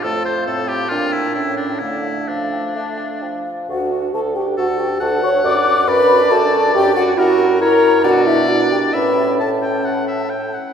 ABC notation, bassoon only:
X:1
M:4/4
L:1/8
Q:1/4=136
K:Dm
V:1 name="Bassoon" clef=bass
F,,2 A,,2 B,,2 A,,2 | D,2 F,2 A,2 F,2 | [K:D] D,,2 D,,2 D,,2 D,,2 | F,,2 F,,2 F,,2 F,,2 |
F,,4 B,,4 | A,,6- A,, z |]